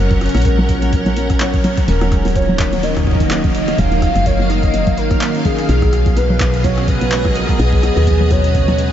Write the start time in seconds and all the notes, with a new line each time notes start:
Already playing: F#1 C#3 F3 F#3 G#3 C#4 A#4 F#5
0.11 C#4, kick, closed hi-hat
0.21 C#3, cross-stick, closed hi-hat
0.26 closed hi-hat
0.29 closed hi-hat
0.34 A#1 F#3, cross-stick, closed hi-hat
0.37 closed hi-hat
0.42 G#3, closed hi-hat
0.45 kick, closed hi-hat
0.58 F#3, low conga
0.69 F3, kick, closed hi-hat
0.82 F#3, closed hi-hat
0.93 kick, closed hi-hat
1.06 F#3, closed hi-hat, low conga
1.17 F#3, closed hi-hat
1.30 kick, cross-stick, closed hi-hat
1.40 F#3 C#5, clap, closed hi-hat
1.54 kick, closed hi-hat
1.64 F#3, closed hi-hat, low conga
1.77 C#4, kick, closed hi-hat
1.88 D#1 C#3 D#3 A#4, closed hi-hat
2.01 F#3, cross-stick, closed hi-hat
2.12 G#3, kick, cross-stick, closed hi-hat
2.21 A#3
2.25 F#3, closed hi-hat
2.28 closed hi-hat
2.30 closed hi-hat
2.33 F3, kick, closed hi-hat
2.36 C#5, closed hi-hat
2.39 closed hi-hat
2.42 closed hi-hat
2.46 F#3, closed hi-hat, low conga
2.59 kick, clap, closed hi-hat
2.73 F#3, closed hi-hat
2.83 F#3 D#5, closed hi-hat
2.96 kick, cross-stick, closed hi-hat
2.99 kick
3.03 F#3 F5, kick
3.07 kick
3.11 kick
3.15 kick
3.20 kick, closed hi-hat
3.31 F#3, clap, closed hi-hat
3.44 C#4, kick, closed hi-hat
3.55 C#3, closed hi-hat
3.68 F#3, cross-stick, closed hi-hat
3.78 D#1 G#3 F5, kick, closed hi-hat
3.92 F#3, closed hi-hat
4.02 F3, kick, cross-stick, closed hi-hat
4.16 F#1 F#3, cross-stick, closed hi-hat
4.26 C#5, kick, closed hi-hat
4.39 F#3
4.50 F#3 D#5, closed hi-hat
4.63 kick, closed hi-hat
4.74 F#3, closed hi-hat
4.87 kick, closed hi-hat, low conga
4.97 G#1 A#4, closed hi-hat
5.11 F#3, kick, cross-stick, closed hi-hat
5.21 A#3, clap, closed hi-hat
5.35 C#4, closed hi-hat
5.45 C#4 G#4, kick, closed hi-hat, low conga
5.58 C#4, closed hi-hat
5.69 B1 B2 F3, closed hi-hat
5.82 F#3, kick, cross-stick, closed hi-hat
5.93 cross-stick, closed hi-hat
6.06 F#3, kick, closed hi-hat
6.17 F#3 B4, closed hi-hat
6.24 B3 G#4
6.30 D#5, low conga
6.40 F#3, kick, clap, closed hi-hat
6.54 closed hi-hat
6.64 F#3 C#5, kick, closed hi-hat
6.77 C#4, cross-stick, closed hi-hat
6.88 C#3 B4, kick, closed hi-hat
7.01 F#3, closed hi-hat
7.12 G#3, clap, closed hi-hat
7.25 F#3, kick, cross-stick, closed hi-hat
7.35 F3 A#4, closed hi-hat
7.49 F#3, kick, cross-stick, closed hi-hat
7.59 B1 G#4, closed hi-hat
7.73 F#3, kick
7.78 closed hi-hat
7.83 F#3, cross-stick, closed hi-hat
7.96 D#2, cross-stick, closed hi-hat
8.07 F#3, kick, closed hi-hat
8.20 low conga
8.31 F#3 C#5, kick, closed hi-hat
8.44 C#4, closed hi-hat
8.55 C#3, kick, closed hi-hat
8.68 F#3, closed hi-hat, low conga
8.78 G#3, closed hi-hat